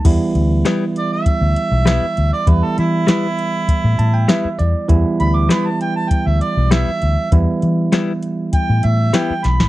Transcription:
<<
  \new Staff \with { instrumentName = "Harmonica" } { \time 4/4 \key e \minor \tempo 4 = 99 r4. d''16 e''2 d''16 | b'16 a'16 e'2. r8 | r8 b''16 d'''16 b''16 a''16 g''16 a''16 g''16 e''16 d''8 e''4 | r2 g''8 e''8 g''8 b''8 | }
  \new Staff \with { instrumentName = "Clean electric guitar" } { \time 4/4 \key e \minor r4 <g b e'>8 r4. <g b e'>8 r8 | r4 <g b e'>8 r4. <g b e'>8 r8 | r4 <g b e'>8 r4. <g b e'>8 r8 | r4 <g b e'>8 r4. <g b e'>8 r8 | }
  \new Staff \with { instrumentName = "Tine electric piano" } { \time 4/4 \key e \minor r1 | r2 r8 a''16 g''16 e''8 d''8 | r1 | r1 | }
  \new Staff \with { instrumentName = "Tine electric piano" } { \time 4/4 \key e \minor <e g b e'>1 | <e g b e'>1 | <e g b e'>1 | <e g b e'>1 | }
  \new Staff \with { instrumentName = "Fingered electric bass" } { \clef bass \time 4/4 \key e \minor e,16 r16 d,8 r4 r16 d,16 r16 b,,8 r16 d,16 r16 | e,16 r16 e8 r4 r16 a,16 a,8 r8 e,16 r16 | e,16 r16 d,8 r4 r16 d,16 r16 b,,8 r16 d,16 r16 | e,16 r16 e8 r4 r16 a,16 a,8 r8 b,,16 a,,16 | }
  \new DrumStaff \with { instrumentName = "Drums" } \drummode { \time 4/4 <cymc hh bd>8 hh8 <hh sn>8 hh8 <hh bd>8 hh8 <hh sn>8 hh8 | <hh bd>8 hh8 <hh sn>8 hh8 <hh bd>8 hh8 <hh sn>8 hh8 | <hh bd>8 hh8 <hh sn>8 hh8 <hh bd>8 hh8 <hh sn>8 hh8 | <hh bd>8 hh8 <hh sn>8 hh8 <hh bd>8 hh8 <hh sn>8 <hh sn>16 sn16 | }
>>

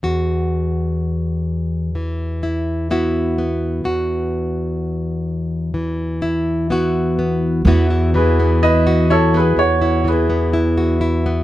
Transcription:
<<
  \new Staff \with { instrumentName = "Upright piano" } { \time 4/4 \key e \major \tempo 4 = 63 r1 | r1 | r8 <gis' b'>8 <b' dis''>8 <a' cis''>16 <gis' b'>16 <fis' cis''>8 <gis' b'>4 r8 | }
  \new Staff \with { instrumentName = "Nylon-string guitar" } { \time 4/4 \key e \major << { fis'2~ fis'8 e'8 <b e' fis'>8 b8 | fis'2~ fis'8 e'8 <b e' fis'>8 b8 | <e b e' fis'>16 e'8 b16 e'16 fis'16 e'16 b8 e'8 b16 e'16 fis'16 e'16 b16 | } \\ { e,2 e2 | e,2 e2 | e,8 e4. e,8 e4. | } >> }
  \new Staff \with { instrumentName = "Upright bass" } { \clef bass \time 4/4 \key e \major r1 | r1 | e,1 | }
>>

